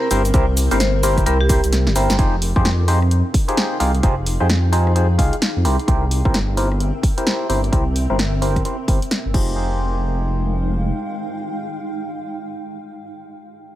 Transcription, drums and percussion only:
0.11 open hi-hat loud
0.11 shaker medium
0.25 closed hi-hat soft
0.25 shaker soft
0.34 kick loud
0.34 closed hi-hat medium
0.34 shaker soft
0.57 open hi-hat loud
0.57 shaker medium
0.71 cross-stick soft
0.71 open hi-hat medium
0.71 shaker soft
0.80 snare loud
0.80 closed hi-hat medium
0.80 shaker soft
1.03 open hi-hat loud
1.03 shaker medium
1.17 kick medium
1.17 cross-stick medium
1.17 closed hi-hat soft
1.17 shaker soft
1.26 closed hi-hat medium
1.26 shaker soft
1.49 kick loud
1.49 open hi-hat loud
1.49 shaker medium
1.64 closed hi-hat medium
1.64 shaker soft
1.73 snare medium
1.73 closed hi-hat medium
1.73 shaker soft
1.87 snare medium
1.96 open hi-hat loud
1.96 shaker medium
2.10 snare medium
2.10 closed hi-hat soft
2.10 shaker soft
2.19 kick loud
2.19 closed hi-hat medium
2.42 open hi-hat loud
2.56 kick loud
2.56 cross-stick soft
2.65 snare loud
2.65 closed hi-hat medium
2.88 open hi-hat loud
3.02 cross-stick medium
3.11 closed hi-hat medium
3.34 kick loud
3.34 open hi-hat loud
3.49 closed hi-hat medium
3.57 snare loud
3.57 closed hi-hat medium
3.80 open hi-hat loud
3.95 closed hi-hat soft
4.03 kick loud
4.03 closed hi-hat medium
4.26 open hi-hat loud
4.41 cross-stick soft
4.50 snare loud
4.50 closed hi-hat medium
4.73 open hi-hat loud
4.87 cross-stick medium
4.96 closed hi-hat medium
5.19 kick loud
5.19 open hi-hat loud
5.33 closed hi-hat medium
5.42 snare loud
5.42 closed hi-hat medium
5.65 open hi-hat loud
5.79 closed hi-hat soft
5.88 kick loud
5.88 closed hi-hat medium
6.11 open hi-hat loud
6.25 kick loud
6.25 cross-stick soft
6.34 snare loud
6.34 closed hi-hat medium
6.57 open hi-hat medium
6.72 cross-stick medium
6.80 closed hi-hat medium
7.03 kick loud
7.03 open hi-hat medium
7.18 closed hi-hat medium
7.27 snare loud
7.27 closed hi-hat medium
7.50 open hi-hat medium
7.64 closed hi-hat soft
7.73 kick loud
7.73 closed hi-hat medium
7.96 open hi-hat loud
8.10 cross-stick soft
8.19 snare loud
8.19 closed hi-hat medium
8.42 open hi-hat loud
8.56 kick medium
8.56 cross-stick medium
8.56 closed hi-hat soft
8.65 closed hi-hat medium
8.88 kick loud
8.88 open hi-hat medium
9.02 closed hi-hat medium
9.11 snare loud
9.11 closed hi-hat medium
9.34 kick loud
9.34 crash medium

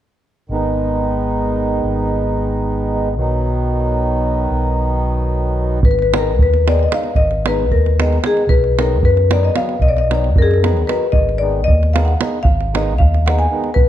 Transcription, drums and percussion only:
5.83 davul low medium
5.99 davul high soft
6.14 davul high medium
6.39 davul low medium
6.54 davul high soft
6.68 davul high medium
6.79 davul high soft
6.92 davul high medium
7.04 davul high soft
7.16 davul low medium
7.31 davul high soft
7.46 davul high medium
7.71 davul low medium
7.86 davul high soft
8.00 davul high medium
8.13 davul high soft
8.24 davul high medium
8.37 davul high soft
8.49 davul low medium
8.64 davul high soft
8.79 davul high medium
9.03 davul low medium
9.17 davul high soft
9.31 davul high medium
9.43 davul high soft
9.56 davul high medium
9.69 davul high soft
9.81 davul low medium
9.97 davul high soft
10.11 davul high medium
10.24 davul high soft
10.36 davul low medium
10.51 davul high soft
10.64 davul high medium
10.77 davul high soft
10.89 davul high medium
11.13 davul low medium
11.29 davul high soft
11.68 davul low medium
11.83 davul high soft
11.96 davul high medium
12.08 davul high soft
12.21 davul high medium
12.45 davul low medium
12.61 davul high soft
12.75 davul high medium
13.00 davul low medium
13.14 davul high soft
13.28 davul high medium
13.40 davul high soft
13.64 davul high soft
13.76 davul low medium

